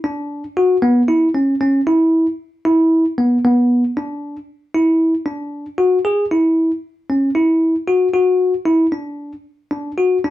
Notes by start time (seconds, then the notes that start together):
0.04 D4
0.57 F#4
0.82 B3
1.08 E4
1.35 C#4
1.61 C#4
1.87 E4
2.65 E4
3.18 B3
3.45 B3
3.97 D4
4.75 E4
5.26 D4
5.78 F#4
6.05 G#4
6.31 E4
7.10 C#4
7.35 E4
7.88 F#4
8.14 F#4
8.66 E4
8.92 D4
9.71 D4
9.98 F#4
10.24 D4